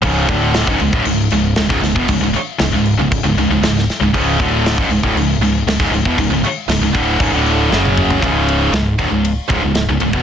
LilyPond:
<<
  \new Staff \with { instrumentName = "Distorted electric guitar" } { \clef bass \time 4/4 \key cis \minor \tempo 4 = 117 <cis, gis, cis>8 <d, a, d>8. <cis, gis,>16 <cis, gis,>16 <d, a,>16 <cis, gis,>8 <cis, gis,>8 <cis, gis,>16 <cis, gis,>16 <cis, gis,>16 <e, b,>16 | <cis, gis,>16 <cis, gis,>16 r8 <cis, gis,>16 <cis, gis,>8 <cis, gis,>8 <cis, gis,>16 <cis, gis,>16 <cis, gis,>16 <cis, gis,>8 r16 <cis, gis,>16 | <cis, gis, cis>8 <d, a, d>8. <cis, gis,>16 <cis, gis,>16 <d, a,>16 <cis, gis,>8 <cis, gis,>8 <cis, gis,>16 <cis, gis,>16 <cis, gis,>16 <e, b,>16 | <cis, gis,>16 <cis, gis,>16 r8 <cis, gis,>16 <cis, gis,>16 <d, a, d>8 <cis, gis,>16 <d, a, d>8. <fis, cis fis>4 |
<cis, gis, cis>4 <cis, gis,>8 <d, a,>16 <cis, gis,>8 r16 <cis, gis,>16 <cis, gis,>8 <cis, gis,>16 <cis, gis,>16 <e, b,>16 | }
  \new Staff \with { instrumentName = "Distorted electric guitar" } { \clef bass \time 4/4 \key cis \minor <cis, gis, cis>8 <d, a, d>8. <cis, gis,>16 <cis, gis,>16 <d, a,>16 <cis, gis,>8 <cis, gis,>8 <cis, gis,>16 <cis, gis,>16 <cis, gis,>16 <e, b,>16 | <cis, gis,>16 <cis, gis,>16 r8 <cis, gis,>16 <cis, gis,>8 <cis, gis,>8 <cis, gis,>16 <cis, gis,>16 <cis, gis,>16 <cis, gis,>8 r16 <cis, gis,>16 | <cis, gis, cis>8 <d, a, d>8. <cis, gis,>16 <cis, gis,>16 <d, a,>16 <cis, gis,>8 <cis, gis,>8 <cis, gis,>16 <cis, gis,>16 <cis, gis,>16 <e, b,>16 | <cis, gis,>16 <cis, gis,>16 r8 <cis, gis,>16 <cis, gis,>16 <d, a, d>8 <cis, gis,>16 <d, a, d>8. <fis, cis fis>4 |
<cis, gis, cis>4 <cis, gis,>8 <d, a,>16 <cis, gis,>8 r16 <cis, gis,>16 <cis, gis,>8 <cis, gis,>16 <cis, gis,>16 <e, b,>16 | }
  \new Staff \with { instrumentName = "Fingered electric bass" } { \clef bass \time 4/4 \key cis \minor cis,,8 d,,8. cis,,16 cis,,16 d,,16 cis,,8 cis,,8 cis,,16 cis,,16 cis,,16 e,,16 | cis,,16 cis,,16 r8 cis,,16 cis,,8 cis,,8 cis,,16 cis,,16 cis,,16 cis,,8 r16 cis,,16 | cis,,8 d,,8. cis,,16 cis,,16 d,,16 cis,,8 cis,,8 cis,,16 cis,,16 cis,,16 e,,16 | cis,,16 cis,,16 r8 cis,,16 cis,,16 d,,8 cis,,16 d,,8. fis,,4 |
cis,,4 cis,,8 d,,16 cis,,8 r16 cis,,16 cis,,8 cis,,16 cis,,16 e,,16 | }
  \new DrumStaff \with { instrumentName = "Drums" } \drummode { \time 4/4 <cymc bd>8 <cymc bd>8 <cymc sn>16 bd16 cymc16 bd16 cymc8 cymc8 <cymc sn>16 <bd sn>16 <cymc sn>16 bd16 | <cymc bd>8 cymc8 <cymc sn>8 cymc8 <cymc bd>8 cymc8 <cymc sn>16 sn16 <cymc sn>8 | <cymc bd>8 <cymc bd>8 <cymc sn>16 bd16 cymc16 bd16 cymc8 cymc8 <cymc sn>16 <bd sn>16 cymc16 bd16 | <cymc bd>8 cymc8 <cymc sn>8 <cymc bd>8 <cymc bd>8 cymc8 sn16 tommh16 toml16 tomfh16 |
<bd cymr>8 cymr8 <cymr sn>8 <bd cymr>8 cymr8 <bd cymr>8 <cymr sn>8 cymr16 bd16 | }
>>